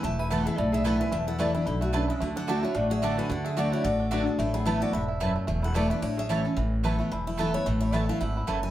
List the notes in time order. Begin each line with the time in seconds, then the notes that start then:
Already playing: E4
0.03 E1 E2 A3 E5 A5
0.19 E4 B4 G#5
0.30 E3 A3 B3 E4 A4 B4 F#5 A5
0.46 B3 E4 G#4 A4 E5
0.57 B1 A2 E4 A4 D5
0.72 E4 G#4 E5
0.84 E3 A3 B3 E4 A4 B4 F#5 A5
1.00 A3 B3 E4 B4 G#5
1.12 E1 E2 A3 E5 A5
1.27 E4 A4 F#5
1.39 E3 A3 B3 E4 A4 B4 D5 A5
1.54 B3 D4 E4 B4
1.66 B1 B2 E4 A4
1.81 A3 F#4
1.93 C#3 A3 D4 E4 B4 A5
2.08 G#3 E4
2.20 D2 D3 A3 F#4
2.35 D4 A4 F#5
2.47 D3 A3 D4 F#4 A4 D5 E5 A5
2.63 A3 D4 E4 F#4 C#5
2.75 A1 A2 D4 F#4 D5
2.90 F#4 G#4 E5
3.02 D3 A3 D4 F#4 A4 D5 F#5 A5
3.17 F#4 B4 G#5
3.29 D2 D3 F#4 A4 F#5
3.45 G#4 A4 E5
3.57 D3 A3 D4 F#4 D5 A5
3.72 E4 F#4 C#5
3.84 A1 A2 F#4 A4 D5
4.00 D4
4.11 D3 A3 D4 F#4 B4 D5 A5
4.27 B3 D4 F#4 G#4 A4
4.38 A1 A2 A3 E4 A4
4.54 B3 E4 G#4
4.65 E3 A3 B3 E4 B4 A5
4.80 B3 E4 F#4 A4 D5
4.93 E1 G#2 E4 A4 E5
5.08 E4
5.20 F#2 A3 E4 B4 A5
5.36 A3
5.47 E1 E2 A3
5.62 E4 A4 F#5
5.74 E3 A3 B3 E4 A4 B4 D5 A5
5.90 A3 B3 D4 E4 B4
6.02 A1 A2 A3 E4 C#5
6.17 C#4 G#4 E5
6.29 E3 A3 C#4 E4 C#5 A5
6.45 C#4 E4 A4
6.57 A1 A2 E3
6.83 E3 A3 B3 E4 B4 A5
6.99 A3 B3 E4
7.12 E1 E2 E4
7.27 A3 E4
7.37 E3 A3 B3 E4 A4 B4 A5
7.54 B3 E4 C#5
7.66 A1 A2 A3 B4
7.80 E4 C#5
7.92 E3 A3 B3 E4 B4 E5 A5
8.09 A3 B3 E4 F5
8.21 G#1 G#2 E4 F#5
8.37 E4
8.47 F#1 F#2 E3 A3 E4 B4 A5
8.63 E4 G#5